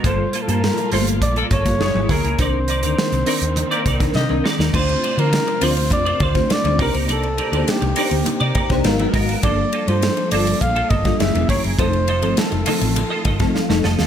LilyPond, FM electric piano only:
\new Staff \with { instrumentName = "FM electric piano" } { \time 4/4 \key c \dorian \tempo 4 = 102 << { r1 | r1 | r1 | r2 \tuplet 3/2 { r8. bes''16 g''8 } f''8 ees''8 |
r1 | r2. f''8 a''8 | } \\ { <g bes f' a'>8 r16 <g bes f' a''>8 r16 <g a bes f' a'>4 r16 <g bes f' a'>16 <fis ais e' gis'>16 <fis ais e' gis'>8 r16 | <ees c' d' bes'>8 r16 <ees c' d' bes'>8 r16 <ees c' d' bes'>4 r16 <ees c' d' bes'>16 r16 <ees c' d' bes'>8 r16 | <a c' d' f' c''>8 r16 <f c' d' f' c''>8 r16 <a c' d' f' bes' c''>4 r16 <a c' d' f' c''>16 r16 <a c' d' f' c''>16 <bes d' ees' g' b' c''>8~ | <bes d' ees' g' b' c''>8 r16 <bes d' ees' g' c''>8 r16 <bes d' ees' g' c''>4 r16 <bes d' ees' g' c''>16 <aes ces' ees' ges' bes'>16 <aes ces' ees' ges' bes'>8 r16 |
<g bes d' f' a'>8 r16 <g bes d' f' a'>8 r16 <g bes d' f' a'>4 r16 <g bes d' f' a'>16 <fis ais cis' e' gis'>16 <fis ais cis' e' gis'>8 r16 | <f a c' ees' a'>8 r16 <f a c' ees' a'>8 r16 <f a c' ees' a'>4 r16 <f a c' ees' a'>16 r16 <f a c' ees' a'>8 r16 | } >> }